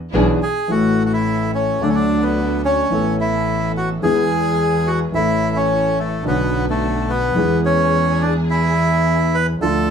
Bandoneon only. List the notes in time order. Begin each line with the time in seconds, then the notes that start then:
0.43 G#4
0.71 F#4
1.06 F#4
1.13 E4
1.55 C#4
1.82 D4
1.89 C#4
1.95 D4
2.23 B3
2.65 C#4
3.21 E4
3.77 F#4
4.03 G#4
4.87 F#4
5.15 E4
5.56 C#4
5.99 A3
6.28 B3
6.70 A3
7.10 B3
7.65 C#4
8.22 D4
8.50 E4
9.35 B4
9.62 A4